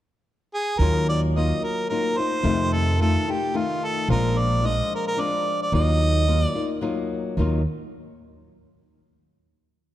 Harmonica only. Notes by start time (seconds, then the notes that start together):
0.54 G#4
0.79 A#4
1.09 D5
1.36 D#5
1.64 A#4
1.90 A#4
2.17 C5
2.73 A4
3.01 A4
3.30 G4
3.57 F4
3.85 A4
4.11 A#4
4.38 D5
4.66 D#5
4.95 A#4
5.07 A#4
5.21 D5
5.62 D5
5.75 D#5
6.45 D5